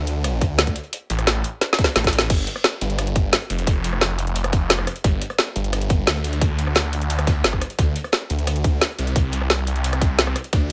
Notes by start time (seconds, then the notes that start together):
Already playing: D2
0.07 closed hi-hat
0.24 cross-stick, closed hi-hat
0.41 D2, kick, closed hi-hat
0.58 snare, closed hi-hat
0.67 kick, closed hi-hat
0.76 closed hi-hat
0.83 closed hi-hat
0.93 closed hi-hat
1.10 A1, closed hi-hat
1.19 cross-stick, closed hi-hat
1.27 snare, closed hi-hat
1.44 closed hi-hat
1.61 snare, closed hi-hat
1.73 snare
1.79 kick, snare, closed hi-hat
1.84 snare, closed hi-hat
1.88 snare
1.96 A1, snare, closed hi-hat
2.04 kick, snare, closed hi-hat
2.13 closed hi-hat
2.19 snare
2.21 snare, closed hi-hat
2.30 G1, kick, closed hi-hat, crash
2.47 closed hi-hat
2.56 cross-stick, closed hi-hat
2.64 snare, closed hi-hat
2.72 snare
2.81 G1, closed hi-hat
2.90 closed hi-hat
2.98 cross-stick, closed hi-hat
3.07 closed hi-hat
3.15 kick, closed hi-hat
3.33 snare, closed hi-hat
3.42 closed hi-hat
3.50 F1, closed hi-hat
3.58 closed hi-hat
3.67 kick, closed hi-hat
3.84 closed hi-hat
3.93 cross-stick
4.01 snare, closed hi-hat
4.18 closed hi-hat
4.27 closed hi-hat
4.35 closed hi-hat
4.44 cross-stick, closed hi-hat
4.52 kick, snare, closed hi-hat
4.69 snare, closed hi-hat
4.79 cross-stick
4.87 cross-stick, closed hi-hat
4.96 closed hi-hat
5.04 G1, kick, closed hi-hat
5.21 closed hi-hat
5.30 cross-stick, closed hi-hat
5.38 snare, closed hi-hat
5.47 snare
5.56 G1, closed hi-hat
5.64 closed hi-hat
5.73 cross-stick, closed hi-hat
5.81 closed hi-hat
5.89 kick, closed hi-hat
6.07 D2, snare, closed hi-hat
6.16 closed hi-hat
6.24 closed hi-hat
6.33 closed hi-hat
6.41 kick, closed hi-hat
6.58 closed hi-hat
6.67 cross-stick
6.75 snare, closed hi-hat
6.93 closed hi-hat
7.01 closed hi-hat
7.10 closed hi-hat
7.19 cross-stick, closed hi-hat
7.27 kick, snare, closed hi-hat
7.35 snare
7.44 G1, snare, closed hi-hat
7.53 kick, cross-stick
7.61 cross-stick, closed hi-hat
7.70 closed hi-hat
7.79 D2, kick, closed hi-hat
7.96 closed hi-hat
8.04 cross-stick, closed hi-hat
8.12 snare, closed hi-hat
8.22 snare
8.30 D2, closed hi-hat
8.39 closed hi-hat
8.47 cross-stick, closed hi-hat
8.56 closed hi-hat
8.64 kick, closed hi-hat
8.81 snare, closed hi-hat
8.90 closed hi-hat
8.98 C2, closed hi-hat
9.07 closed hi-hat
9.16 kick, closed hi-hat
9.32 closed hi-hat
9.41 cross-stick
9.50 snare, closed hi-hat
9.67 closed hi-hat
9.76 closed hi-hat
9.84 closed hi-hat
9.93 cross-stick, closed hi-hat
10.01 kick, snare, closed hi-hat
10.18 snare, closed hi-hat
10.27 cross-stick
10.36 cross-stick, closed hi-hat
10.44 closed hi-hat
10.53 D2, kick, closed hi-hat